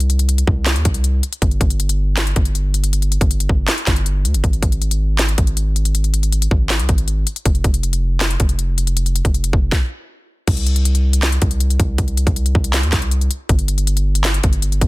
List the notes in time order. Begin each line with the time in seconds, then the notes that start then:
Already playing: C2
0.00 closed hi-hat
0.10 closed hi-hat
0.19 closed hi-hat
0.29 closed hi-hat
0.38 closed hi-hat
0.47 C2, kick
0.66 snare, clap, closed hi-hat
0.76 D#2, closed hi-hat
0.85 C2, kick, closed hi-hat
0.94 closed hi-hat
1.04 closed hi-hat
1.23 closed hi-hat
1.33 closed hi-hat
1.42 G1, kick, closed hi-hat
1.51 closed hi-hat
1.61 G1, kick, closed hi-hat
1.70 closed hi-hat
1.80 closed hi-hat
1.89 closed hi-hat
2.17 snare, clap, closed hi-hat
2.27 closed hi-hat
2.36 G1, kick, closed hi-hat
2.45 closed hi-hat
2.55 closed hi-hat
2.74 closed hi-hat
2.84 closed hi-hat
2.93 closed hi-hat
3.02 closed hi-hat
3.12 closed hi-hat
3.21 G1, kick, closed hi-hat
3.31 closed hi-hat
3.40 closed hi-hat
3.49 G1, kick
3.68 snare, clap, closed hi-hat
3.78 closed hi-hat
3.87 G1, kick, snare, clap, closed hi-hat
3.96 closed hi-hat
4.06 closed hi-hat
4.25 D2, closed hi-hat
4.34 G1, closed hi-hat
4.44 G#1, kick, closed hi-hat
4.53 closed hi-hat
4.62 G#1, kick, closed hi-hat
4.72 closed hi-hat
4.82 closed hi-hat
4.91 closed hi-hat
5.19 snare, clap, closed hi-hat
5.29 closed hi-hat
5.38 G#1, kick, closed hi-hat
5.47 closed hi-hat
5.57 closed hi-hat
5.76 closed hi-hat
5.85 closed hi-hat
5.95 closed hi-hat
6.04 closed hi-hat
6.14 closed hi-hat
6.23 closed hi-hat
6.32 closed hi-hat
6.42 closed hi-hat
6.51 G#1, kick
6.70 snare, clap, closed hi-hat
6.79 C2, closed hi-hat
6.89 G#1, kick, closed hi-hat
6.98 closed hi-hat
7.08 closed hi-hat
7.27 closed hi-hat
7.36 closed hi-hat
7.46 F1, kick, closed hi-hat
7.55 closed hi-hat
7.64 F1, kick, closed hi-hat
7.74 closed hi-hat
7.83 closed hi-hat
7.93 closed hi-hat
8.21 snare, clap, closed hi-hat
8.30 closed hi-hat
8.40 F1, kick, closed hi-hat
8.49 closed hi-hat
8.59 closed hi-hat
8.78 closed hi-hat
8.87 closed hi-hat
8.97 closed hi-hat
9.06 closed hi-hat
9.16 closed hi-hat
9.25 F1, kick, closed hi-hat
9.34 closed hi-hat
9.44 closed hi-hat
9.53 F1, kick
9.72 kick, snare
10.48 C2, kick, closed hi-hat, crash
10.57 closed hi-hat
10.67 closed hi-hat
10.76 closed hi-hat
10.85 closed hi-hat
10.95 closed hi-hat
11.13 closed hi-hat
11.22 snare, clap, closed hi-hat
11.32 closed hi-hat
11.42 C2, kick, closed hi-hat
11.51 closed hi-hat
11.60 closed hi-hat
11.70 closed hi-hat
11.80 C2, kick, closed hi-hat
11.98 C2, kick, closed hi-hat
12.08 closed hi-hat
12.17 closed hi-hat
12.27 C2, kick, closed hi-hat
12.36 closed hi-hat
12.46 closed hi-hat
12.55 C2, kick
12.64 closed hi-hat
12.73 snare, clap, closed hi-hat
12.83 D#2, closed hi-hat
12.92 C2, kick, snare, clap, closed hi-hat
13.02 closed hi-hat
13.11 closed hi-hat
13.21 closed hi-hat
13.31 closed hi-hat
13.49 G1, kick, closed hi-hat
13.59 closed hi-hat
13.68 closed hi-hat
13.78 closed hi-hat
13.87 closed hi-hat
13.97 closed hi-hat
14.15 closed hi-hat
14.24 snare, clap, closed hi-hat
14.34 closed hi-hat
14.44 G1, kick, closed hi-hat
14.53 closed hi-hat
14.62 closed hi-hat
14.72 closed hi-hat
14.81 G1, kick, closed hi-hat